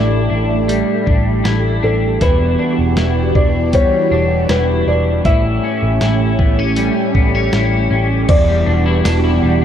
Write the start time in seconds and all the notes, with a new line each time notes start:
Already playing: A1 A2 G3 A3 D4 E4 G4 D5
0.30 A1 D4
0.68 G3, closed hi-hat
1.06 A1 D4, kick
1.44 A1 E4, snare, closed hi-hat
1.83 A1 D4 A4
2.21 E1 E2 E3 B3 E4 F#4 G4 B4, kick, closed hi-hat
2.59 D4
2.79 E1
2.97 E1 E4, snare, closed hi-hat
3.35 E1 D4 D5, kick
3.73 G3 C#5, kick, closed hi-hat
4.11 E1 D4
4.49 E1 E4 B4, snare, closed hi-hat
4.87 E1 D4 D5
5.25 A1 A2 A3 C#4 E4 G4 E5, kick, closed hi-hat
5.64 C#4
5.83 A1
6.01 A1 E4, snare, closed hi-hat
6.39 A1 B3, kick
6.59 C#4
6.76 G3, closed hi-hat
7.15 A1 B3, kick
7.35 C#4
7.53 A1 E4, snare, closed hi-hat
7.91 A1 C#4
8.28 E1 E2 E3 B3 D4 F#4 G4 D5, kick, crash, ride
8.48 G3
8.66 E1 D4
8.86 E4
9.04 E1 D4, snare, ride, tambourine
9.24 E4
9.42 E1 G3
9.61 D4